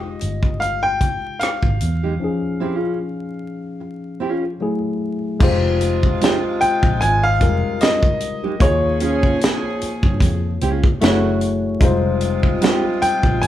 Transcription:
Already playing: F1 G#3 D#4 F4 G4 D#5
0.21 G1, closed hi-hat
0.43 kick
0.60 F5, closed hi-hat
0.83 G5
1.01 kick, closed hi-hat
1.40 F5, cross-stick, closed hi-hat
1.63 G#1, kick
1.81 E2, closed hi-hat
2.03 G#3 D#4 G4
2.20 F3 C#4 D#4
2.24 G#4
2.60 C4 E4 G4
2.75 C#4 F4 G#4
3.80 muted nylon-string guitar stroke
4.20 C#4 F4 G#4
4.61 F#3 A3 E4 G#4
5.40 F1 C3 G#3 D#4 F4 G4, kick, crash
5.44 C5
5.81 closed hi-hat
6.03 kick
6.21 G#3 D#4 G4, snare, closed hi-hat
6.61 G5, muted fingered electric bass stroke, closed hi-hat
6.83 A#1, kick
7.01 G#1 G#5, closed hi-hat
7.23 F5
7.40 F1 G3 D#4 F4 G4 A#4, kick, closed hi-hat
7.47 G#3
7.81 D#5, snare, closed hi-hat
8.03 kick
8.20 closed hi-hat
8.43 G#3 D#4 G4
8.60 D#2 F3 A#3 C#4 D#4 F4 G#4 C#5, kick, closed hi-hat
8.64 C#5
9.00 C#4 F4 G#4, closed hi-hat
9.23 kick
9.41 snare, closed hi-hat
9.81 muted fingered electric bass stroke, closed hi-hat
10.03 G2, kick
10.20 F2, muted nylon-string guitar stroke, kick, closed hi-hat
10.61 C#2 C#4 F4 G#4, closed hi-hat
10.84 kick
11.00 F#1 C#3 A3 E4 F#4 G#4 C#5, snare, closed hi-hat
11.41 closed hi-hat
11.80 F1 C3 G3 G#3 D#4 F4, kick, closed hi-hat
11.85 C5
12.21 closed hi-hat
12.43 kick
12.61 G#3 D#4 G4, snare, closed hi-hat
13.02 G5, muted fingered electric bass stroke, closed hi-hat
13.23 A#1, kick
13.41 G#1 G#5, closed hi-hat

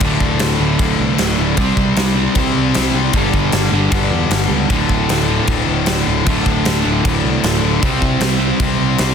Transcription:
0.00 D1 D2, kick, crash
0.04 A2 D3
0.20 D1, kick
0.39 D1, snare, crash
0.58 D1 D2 A2 D3
0.79 D1 D2 A2 D3, kick, crash
1.00 C2
1.18 D1, snare, crash
1.37 D1 D2 A2 D3
1.57 C2 C3 G3, kick, crash
1.61 C4
1.77 C2, kick
1.96 C2, snare, crash
2.16 C3 G3 C4
2.35 C2 C3 G3, kick, crash
2.39 C4
2.57 C2
2.74 C2, snare, crash
2.92 C2 C3 G3 C4
3.13 G1 G2 D3 G3, kick, crash
3.33 G1, kick
3.52 G1, snare, crash
3.72 G1 D3 G3
3.76 G2
3.92 G1 G2 D3 G3, kick, crash
4.10 E2
4.31 G1, snare, crash
4.48 C#2 G2 D3 G3
4.68 D1 D2 A2 D3, kick, crash
4.89 D1, kick
5.09 D1, snare, crash
5.28 D2 A2 D3
5.46 D1 D2 A2, kick, crash
5.50 D3
5.68 D1
5.86 D1, snare, crash
6.05 D1 A2 D3
6.09 D2
6.26 D1 D2 A2 D3, kick, crash
6.46 D1, kick
6.65 D1, snare, crash
6.84 D1 D2 A2 D3
7.05 D1 D2 A2, kick, crash
7.09 D3
7.24 C2
7.43 D1, snare, crash
7.60 D1 D2 A2 D3
7.82 C2 C3 G3 C4, kick, crash
8.02 C2, kick
8.21 C2, snare, crash
8.39 C3 G3 C4
8.60 C2 C3 G3, kick, crash
8.64 C4
8.79 C2
8.98 C2, snare, crash

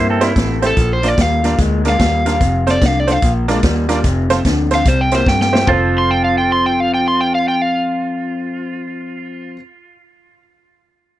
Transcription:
Already playing: G2 C3 A#3 E4
0.10 C4 A4
0.21 C3 A#3 C4 E4 G4 C5, snare, closed hi-hat
0.35 A1 C3 A3, kick, snare, closed hi-hat
0.62 C3 A3 C4 E4 G4 C5, snare, closed hi-hat
0.66 A4
0.77 A#1 A#2 F3, kick, snare, closed hi-hat
0.93 C5
1.02 A#2 F3 D4 F4 A#4 D5, snare, closed hi-hat
1.08 D5
1.17 D#2 A#2 G3, kick, snare, closed hi-hat
1.21 F5
1.43 A#2 G3 D4 F4 A#4 D5, snare, closed hi-hat
1.58 D2 A#2 G#3, kick, snare, closed hi-hat
1.84 A#2 G#3 D4 F4 A#4 D5, snare, closed hi-hat
1.89 F5
1.99 D#2 A#2 G3, kick, snare, closed hi-hat
2.25 A#2 G3 D4 F4 A#4 F5, snare, closed hi-hat
2.40 F1 F2 C3, kick, snare, closed hi-hat
2.66 F2 C3 C4 F4 A4 C5, snare, closed hi-hat
2.71 D5
2.81 C2 F2 D3, kick, snare, closed hi-hat
2.86 F5
3.00 D5
3.07 F2 D3 C4 F4 A4 C5, snare, closed hi-hat
3.12 F5
3.22 A#1 A#2 F3, kick, snare, closed hi-hat
3.48 A#2 G#3 D4 F4 A#4 D5, snare, closed hi-hat
3.63 D#2 A#2 G3, kick, snare, closed hi-hat
3.89 A#2 G3 D4 F4 A#4 D5, snare, closed hi-hat
4.04 F1 F2 C3, kick, snare, closed hi-hat
4.30 F2 C3 C4 F4 A4 C5, snare, closed hi-hat
4.45 D2 F2 D3, kick, snare, closed hi-hat
4.71 F2 D3 C4 F4 A4 C5, snare, closed hi-hat
4.75 F5
4.85 C2 C3 G3 C5, kick, snare, closed hi-hat
5.01 G5
5.11 C3 A#3 C4 E4 G4 C5, snare, closed hi-hat
5.26 G2 C3 A3 G5, kick, snare
5.41 G5, snare
5.53 C3 A3 C4 E4 G4 C5, snare
5.66 F1 F3 C4 F4 A4, kick, floor tom
5.70 A4 C5
5.98 C6
6.11 G5
6.24 F5
6.38 G5
6.52 C6
6.66 G5
6.80 F5
6.94 G5
7.08 C6
7.21 G5
7.35 F5
7.48 G5
7.62 F5

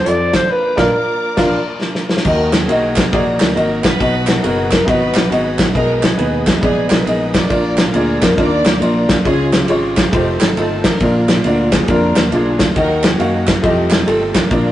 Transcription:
Already playing: F3 C4 D#4 A4 D#5 F5 A5 C6
0.05 F2 C4 F4 A4 D5, closed hi-hat
0.33 A1 C5, kick, snare, clap, closed hi-hat
0.49 F3 A#3 D4 A#4 B4 D5 A#5 D6
0.76 A#1 A#2 D4 F4 A#4 D5 F5, kick, snare, crash
1.37 A#1 D4 F4 A#4 D5 F5, kick, snare, crash
1.81 snare
1.95 snare
2.10 snare
2.17 snare
2.24 D#2 D#3 F#3 A#3 D#4 F#4 A#4 D#5, kick, crash
2.52 D#4 G#4, snare, clap, ride
2.68 B1 A#3 D#4 F#4 D#5, ride
2.96 kick, snare, clap, ride
3.11 A#1 A#3 D#4 F#4 G#4 D5, kick, ride
3.39 D2 A#4, snare, clap, ride
3.54 G#1 A#3 D#4 F#4 A#4 D#5, ride
3.83 A#1 D#4 F#4 B4, kick, snare, clap, ride
3.99 B1 B2 F#3 B3 D#4 F#4 B4 D#5, kick, ride
4.27 A#4, snare, clap, ride
4.42 F#1 B3 D#4 F#4 G#4 A#4, ride
4.70 A#4, kick, snare, clap, ride
4.85 G#1 B3 D#4 F#4 B4 D#5, kick, ride
5.14 A#1, snare, clap, ride
5.30 G#1 B3 D#4 F#4 G#4 D#5, ride
5.59 A#1, kick, snare, clap, ride
5.73 B1 B2 G#3 B3 D#4 G#4 A#4 B4 D#5, kick, ride
6.02 B3 D#4 G#4, snare, clap, ride
6.18 D#2 B3 D#4 G#4 B4, ride
6.47 kick, snare, clap, ride
6.61 A#1 B3 D#4 G#4 D5, kick, ride
6.89 B1 A#4, snare, clap, ride
7.05 A#1 B3 D#4 G#4 A#4 D#5, ride
7.34 F4 A#4 D5, kick, snare, clap, ride
7.49 A#1 A#2 F3 A#3 C#4 D4 F4 A#4 D5, kick, ride
7.55 D4
7.77 A#4, snare, clap, ride
7.93 D2 A#3 D4 F4 G#4 D5, ride
8.20 F2 A#4, kick, snare, clap, ride
8.35 D#2 A#3 D4 F4 A#4 D5, kick, ride
8.65 D2, snare, clap, ride
8.80 A#1 A#3 D4 F4 A#4 D5, ride
9.09 B1, kick, snare, clap, ride
9.23 C#2 C#3 F3 G#3 C#4 F4 G#4 C#5, kick, ride
9.52 C#4 G4, snare, clap, ride
9.68 G#1 G#3 C#4 F4 C#5, ride
9.97 kick, snare, clap, ride
10.12 F1 D#3 A3 C4 D#4 F4 G4 C5, kick, ride
10.40 G1 A4, snare, clap, ride
10.56 G1 A3 D#4 F4 A4, ride
10.83 A1 D4 F4 A#4, kick, snare, clap, ride
11.00 A#1 A#2 D3 F3 A#3 D4 F4 D5, kick, ride
11.27 G#4, snare, clap, ride
11.44 D2 A#3 D4 F4 F#4 D5, ride
11.72 G#4, kick, snare, clap, ride
11.88 F2 A#3 D4 F4 A#4, kick, ride
12.16 D#2, snare, clap, ride
12.31 B1 A#3 D4 F4 G#4 D5, ride
12.59 D2, kick, snare, clap, ride
12.75 D#2 D#3 F#3 A#3 D#4 F#4 A#4 D#5, kick, ride
13.04 D#4 G#4, snare, clap, ride
13.18 F#2 A#3 D#4 F#4 F5, ride
13.47 kick, snare, clap, ride
13.62 F2 D#3 G3 A3 C4 D#4 F4 G4 D#5, kick, ride
13.90 A4, snare, clap, ride
14.06 G1 A3 F4 G4 A4, ride
14.35 A1 D4 F4 A#4, kick, snare, clap, ride
14.50 A#1 A#2 C#3 F3 A#3 D4 F4 D5, kick, ride
14.57 D3

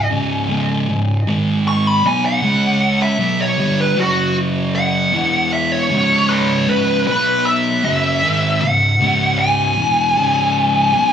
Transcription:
0.10 C#2 G#2 C#3
0.49 C#2 G#2 C#3
0.89 C#2 G#2
1.27 G#2 D#3 G#3
1.68 C#6
1.87 B5
2.04 B2 F#3 B3 G#5
2.25 F#5
2.42 C#3 G#3 C#4
3.02 E5
3.19 B2 F#3 B3
3.41 C#5
3.58 G2 D3 G3
3.81 B4
3.96 F#2 C#3 F#3 F#4
4.75 F#5
5.13 E2 B2 E3
5.53 E5
5.72 C#5
5.91 C#2 G#2 C#3
6.29 B4 C#5
6.68 C#2 G#2 C#3
7.07 B2 F#3 B3 B4
7.45 E5
7.84 F#2 C#3 F#3 E5
8.23 G#2 D#3 G#3
8.61 C#2 G#2 F#5
9.00 C#2 G#2 C#3
9.39 G#5
9.78 E2 B2 E3
10.16 C#2 G#2 C#3
10.94 B2 F#3 B3

